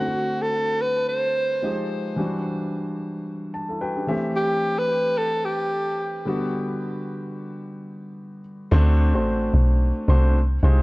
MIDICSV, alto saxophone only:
0, 0, Header, 1, 2, 480
1, 0, Start_track
1, 0, Tempo, 545455
1, 1913, Time_signature, 4, 2, 24, 8
1, 9525, End_track
2, 0, Start_track
2, 0, Title_t, "Alto saxophone"
2, 0, Program_c, 0, 65
2, 0, Note_on_c, 0, 66, 85
2, 372, Note_on_c, 0, 69, 94
2, 385, Note_off_c, 0, 66, 0
2, 719, Note_on_c, 0, 71, 98
2, 732, Note_off_c, 0, 69, 0
2, 956, Note_off_c, 0, 71, 0
2, 959, Note_on_c, 0, 72, 104
2, 1641, Note_off_c, 0, 72, 0
2, 3839, Note_on_c, 0, 67, 93
2, 4210, Note_on_c, 0, 71, 105
2, 4223, Note_off_c, 0, 67, 0
2, 4557, Note_on_c, 0, 69, 93
2, 4570, Note_off_c, 0, 71, 0
2, 4796, Note_on_c, 0, 67, 85
2, 4809, Note_off_c, 0, 69, 0
2, 5515, Note_off_c, 0, 67, 0
2, 9525, End_track
0, 0, End_of_file